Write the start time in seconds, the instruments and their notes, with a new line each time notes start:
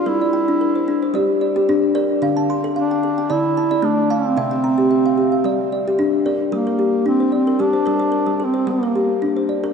Already playing: kalimba D5
0.06 kalimba G3 A#4, duduk E4
0.21 kalimba D5
0.33 kalimba G5
0.48 kalimba D4
0.61 kalimba A#4
0.76 kalimba C5
0.88 kalimba D4
1.03 kalimba C5
1.14 kalimba G3 G4 D5
1.41 kalimba D5
1.56 kalimba G4
1.69 kalimba D4
1.95 kalimba A#4 D5
2.22 kalimba D3 D4 F5
2.37 kalimba A5
2.50 kalimba C6
2.64 kalimba A4
2.76 duduk D4, kalimba F5
2.91 kalimba G5
3.04 kalimba A4
3.18 kalimba G5
3.30 kalimba D3 D5 A5, duduk E4
3.57 kalimba A5
3.71 kalimba D5
3.83 kalimba A3, duduk D4
4.10 duduk C4, kalimba F5 A5
4.37 kalimba C3 C4 E5
4.51 kalimba G5
4.64 kalimba A#5
4.78 kalimba G4
4.91 kalimba E5
5.06 kalimba F5
5.18 kalimba G4
5.32 kalimba F5
5.44 kalimba G3 D5
5.72 kalimba D5
5.88 kalimba G4
5.99 kalimba D4
6.26 kalimba A#4 D5
6.52 kalimba G3, duduk A#3
6.67 kalimba A#4
6.79 kalimba G4
7.06 duduk C4, kalimba D4
7.20 kalimba C5
7.32 duduk C4, kalimba D5
7.47 kalimba A#4
7.59 kalimba G3 G4, duduk D4
7.73 kalimba C5
7.86 kalimba G3 A#4
8.00 kalimba C5
8.12 kalimba A#4
8.27 kalimba G3
8.36 duduk D4
8.40 kalimba A4
8.45 duduk C4
8.54 kalimba C5
8.67 kalimba G3, duduk A#3
8.83 kalimba A#4
8.96 kalimba G4
9.22 kalimba D4
9.37 kalimba C5
9.49 kalimba D5
9.64 kalimba A#4